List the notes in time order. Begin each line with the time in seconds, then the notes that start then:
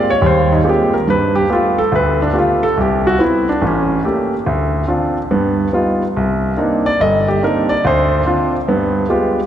0.10 C#5
0.21 D#2 G3
0.26 C5
0.52 D#4
0.64 G#3 A#3 C4 F4 G4
0.69 G4
0.93 A#4
1.07 G2 B4
1.35 G4
1.50 A3 B3 F4 G4
1.78 A4
1.92 D2 B4
2.22 D4
2.33 A3 B3 F4 G4
2.38 F4
2.63 A4
2.77 C2 G4
3.07 F#4
3.19 B3 C4 E4
3.24 E4
3.49 D4
3.61 A1
3.66 C#4
4.04 A3 A#3 C#4 G4
4.46 D2
4.88 C4 D4 F4
5.31 G2 B3
5.73 G3 B3 D#4 F4
6.16 C2
6.57 A#3 C4 D4 D#4
6.86 D5
7.00 G1 D#5
7.28 G4
7.42 A#3 C4 D4 D#4 A#4
7.69 D5
7.85 D2 C5
8.26 C4 D4 F4
8.68 G2 B3
9.09 G#3 B3 F4 G4